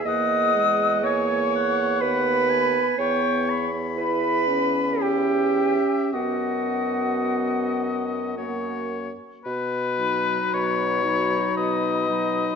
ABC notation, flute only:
X:1
M:3/4
L:1/16
Q:1/4=57
K:B
V:1 name="Flute"
d'4 c'4 b4 | c'3 z b4 =g4 | f8- f2 z2 | z2 b4 b4 b2 |]